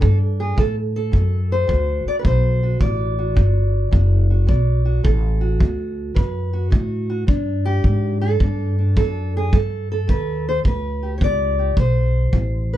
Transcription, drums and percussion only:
0.02 kick
0.58 kick
1.13 kick
1.69 kick
2.25 kick
2.81 kick
3.37 kick
3.93 kick
4.49 kick
5.05 kick
5.60 kick
6.16 kick
6.72 kick
7.28 kick
7.84 kick
8.40 kick
8.97 kick
9.53 kick
10.09 kick
10.65 kick
11.21 kick
11.77 kick
12.33 kick

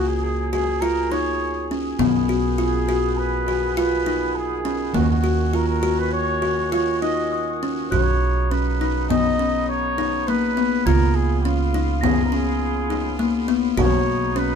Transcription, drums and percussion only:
0.53 frame drum
1.11 frame drum
1.70 frame drum
1.99 frame drum
3.47 frame drum
4.06 frame drum
4.66 frame drum
4.94 frame drum
6.43 frame drum
7.62 frame drum
7.93 frame drum
9.09 frame drum
9.99 frame drum
10.87 frame drum
12.03 frame drum
12.91 frame drum
13.78 frame drum

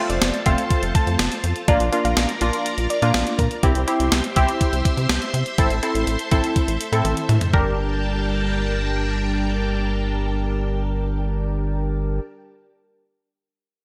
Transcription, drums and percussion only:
0.10 closed hi-hat
0.22 snare, closed hi-hat
0.34 closed hi-hat
0.46 kick, closed hi-hat
0.58 closed hi-hat
0.71 kick, closed hi-hat
0.83 closed hi-hat
0.95 kick, closed hi-hat
1.07 closed hi-hat
1.19 snare, closed hi-hat
1.32 closed hi-hat
1.44 closed hi-hat
1.56 closed hi-hat
1.68 kick, closed hi-hat
1.80 closed hi-hat
1.93 closed hi-hat
2.05 closed hi-hat
2.17 snare, closed hi-hat
2.29 closed hi-hat
2.41 closed hi-hat
2.53 closed hi-hat
2.66 closed hi-hat
2.78 closed hi-hat
2.90 closed hi-hat
3.02 closed hi-hat
3.14 snare, closed hi-hat
3.27 closed hi-hat
3.39 kick, closed hi-hat
3.51 closed hi-hat
3.63 kick, closed hi-hat
3.75 closed hi-hat
3.88 closed hi-hat
4.00 closed hi-hat
4.12 snare, closed hi-hat
4.24 closed hi-hat
4.36 kick, closed hi-hat
4.49 closed hi-hat
4.61 kick, closed hi-hat
4.73 closed hi-hat
4.85 kick, closed hi-hat
4.97 closed hi-hat
5.09 snare, closed hi-hat
5.22 closed hi-hat
5.34 closed hi-hat
5.46 closed hi-hat
5.58 kick, closed hi-hat
5.70 closed hi-hat
5.83 closed hi-hat
5.95 closed hi-hat
6.07 closed hi-hat
6.19 closed hi-hat
6.31 kick, closed hi-hat
6.44 closed hi-hat
6.56 kick, closed hi-hat
6.68 closed hi-hat
6.81 closed hi-hat
6.93 closed hi-hat
7.05 closed hi-hat, high tom
7.17 closed hi-hat
7.29 closed hi-hat, mid tom
7.41 closed hi-hat, floor tom
7.53 kick

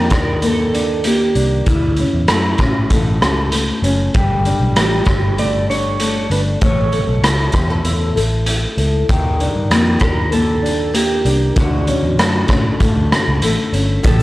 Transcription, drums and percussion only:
0.10 kick, cross-stick, closed hi-hat
0.42 closed hi-hat
0.75 closed hi-hat
1.04 closed hi-hat
1.35 closed hi-hat
1.66 kick, closed hi-hat
1.97 closed hi-hat
2.28 cross-stick, closed hi-hat
2.58 kick, cross-stick, closed hi-hat
2.90 kick, closed hi-hat
3.22 cross-stick, closed hi-hat
3.52 closed hi-hat
3.84 closed hi-hat
4.14 kick, closed hi-hat
4.45 closed hi-hat
4.76 cross-stick, closed hi-hat
5.05 kick, cross-stick, closed hi-hat
5.38 closed hi-hat
5.71 closed hi-hat
6.00 closed hi-hat
6.31 closed hi-hat
6.61 kick, closed hi-hat
6.92 closed hi-hat
7.24 cross-stick, closed hi-hat
7.52 kick, cross-stick, closed hi-hat
7.85 closed hi-hat
8.17 closed hi-hat
8.46 closed hi-hat
8.78 closed hi-hat
9.09 kick, closed hi-hat
9.40 closed hi-hat
9.71 cross-stick, closed hi-hat
10.00 kick, cross-stick, closed hi-hat
10.32 closed hi-hat
10.66 closed hi-hat
10.95 closed hi-hat
11.26 closed hi-hat
11.56 kick, closed hi-hat
11.87 closed hi-hat
12.19 cross-stick, closed hi-hat
12.48 kick, cross-stick, closed hi-hat
12.80 kick, closed hi-hat
13.12 cross-stick, closed hi-hat
13.42 closed hi-hat
13.74 closed hi-hat
14.04 kick, closed hi-hat, shaker

